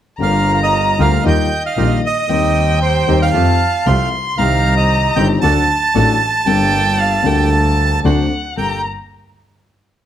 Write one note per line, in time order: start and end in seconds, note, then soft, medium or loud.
0.19 0.95 G1 medium
0.19 0.95 G2 medium
0.19 0.94 D3 medium
0.19 0.94 G3 medium
0.19 0.95 A#3 medium
0.19 0.95 F4 medium
0.19 0.96 F4 medium
0.19 0.95 G4 medium
0.19 1.20 A#5 medium
0.23 0.52 F5 medium
0.54 0.60 F5 medium
0.63 1.02 D#5 medium
0.98 1.21 D2 medium
0.98 1.21 D3 medium
0.98 1.21 G3 medium
0.98 1.21 A#3 medium
0.98 1.21 F4 medium
0.98 1.21 G4 medium
0.98 1.24 F5 medium
1.24 1.47 D#2 medium
1.24 1.46 D#3 medium
1.24 1.47 G3 medium
1.24 1.47 A#3 medium
1.24 1.47 D#4 medium
1.24 1.47 F4 medium
1.24 1.47 G4 medium
1.24 2.31 D#5 medium
1.28 1.63 G5 medium
1.66 2.02 F5 medium
1.77 1.99 A#1 medium
1.77 1.99 A#2 medium
1.77 1.99 D#3 medium
1.77 1.99 G3 medium
1.77 1.99 A#3 medium
1.77 1.99 D#4 medium
1.77 1.99 F4 medium
1.77 1.99 G4 medium
2.06 2.79 D#5 medium
2.28 3.04 D#2 medium
2.28 2.29 D#3 medium
2.28 3.05 D#3 medium
2.28 3.04 G3 medium
2.28 3.04 C4 medium
2.28 3.05 C4 soft
2.28 3.04 D#4 medium
2.28 3.04 G4 medium
2.28 3.33 G5 medium
2.32 3.06 G4 medium
2.82 3.19 C5 medium
3.07 3.30 D#2 medium
3.07 3.30 D#3 medium
3.07 3.30 G3 medium
3.07 3.30 C4 medium
3.07 3.30 D#4 medium
3.07 3.30 G4 medium
3.22 4.09 F5 medium
3.33 3.56 F2 medium
3.33 3.56 F3 medium
3.33 3.56 A3 medium
3.33 3.56 C4 medium
3.33 3.56 F4 medium
3.33 3.56 G4 medium
3.33 3.88 A5 medium
3.86 4.08 C2 medium
3.86 4.09 C2 medium
3.86 4.08 C3 medium
3.86 4.08 F3 medium
3.86 4.08 A3 medium
3.86 4.08 A3 soft
3.86 4.09 C4 soft
3.86 4.08 F4 medium
3.86 4.08 G4 medium
3.86 4.40 C6 medium
4.37 5.13 C2 medium
4.37 5.13 C3 medium
4.37 5.12 D#3 medium
4.37 5.13 G3 soft
4.37 5.13 C4 medium
4.37 5.14 C4 soft
4.37 5.13 D#4 medium
4.37 5.13 G4 medium
4.37 5.14 G4 medium
4.37 4.75 F5 medium
4.37 5.41 A#5 loud
4.77 5.18 D#5 medium
5.16 5.38 G1 medium
5.16 5.39 G1 medium
5.16 5.39 G2 medium
5.16 5.39 D#3 medium
5.16 5.39 G3 medium
5.16 5.39 C4 medium
5.16 5.39 D#4 medium
5.16 5.39 G4 medium
5.16 5.28 G5 medium
5.41 5.65 D2 medium
5.41 5.65 D3 medium
5.41 5.65 F#3 medium
5.41 5.65 A3 medium
5.41 5.65 D4 medium
5.41 5.64 F#4 medium
5.41 5.65 A4 medium
5.41 8.00 A5 medium
5.41 6.48 A5 medium
5.94 6.17 A1 medium
5.94 6.17 A2 medium
5.94 6.17 F#3 medium
5.94 6.17 A3 medium
5.94 6.17 D4 medium
5.94 6.17 F#4 medium
5.94 6.17 A4 medium
6.45 7.22 G1 medium
6.45 7.22 G2 medium
6.45 7.21 G3 medium
6.45 7.21 A#3 medium
6.45 7.22 A#3 medium
6.45 7.22 D4 medium
6.45 7.22 G4 medium
6.45 7.22 A4 medium
6.45 7.01 G5 medium
6.49 7.23 A4 medium
7.00 7.28 F5 medium
7.22 7.99 D2 medium
7.22 8.00 D2 medium
7.22 8.00 D3 medium
7.22 7.99 G3 medium
7.22 7.99 A#3 medium
7.22 8.00 A#3 medium
7.22 8.00 D4 medium
7.22 8.00 G4 medium
7.22 8.00 A4 medium
7.22 8.01 A4 medium
7.26 7.52 G5 medium
7.54 8.07 A5 medium
8.04 8.26 D2 medium
8.04 8.27 D2 medium
8.04 8.27 D3 medium
8.04 8.26 F#3 medium
8.04 8.26 C4 medium
8.04 8.26 D4 medium
8.04 8.27 D4 medium
8.04 8.27 F#4 medium
8.04 8.27 A4 medium
8.04 8.27 C5 medium
8.04 8.57 F#5 medium
8.56 8.79 G1 soft
8.56 8.79 G2 soft
8.56 8.79 A#3 soft
8.56 8.79 G4 soft
8.56 8.78 A4 medium
8.56 8.79 A4 soft
8.56 8.82 G5 medium
8.56 8.82 A#5 medium